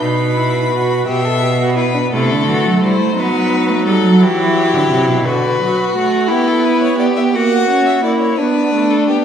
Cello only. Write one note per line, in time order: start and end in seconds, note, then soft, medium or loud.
0.01 1.05 B2 medium
1.07 2.09 B2 medium
2.13 2.32 C3 medium
2.30 2.49 D3 medium
2.47 2.66 E3 medium
2.64 2.81 F#3 medium
2.82 2.99 G3 medium
2.99 3.16 A3 medium
3.16 3.70 B3 medium
3.69 3.86 A3 medium
3.86 3.94 G3 medium
4.04 4.23 F#3 medium
4.21 4.75 E3 medium
4.74 4.90 D3 medium
4.90 5.10 C3 medium
5.08 5.26 B2 medium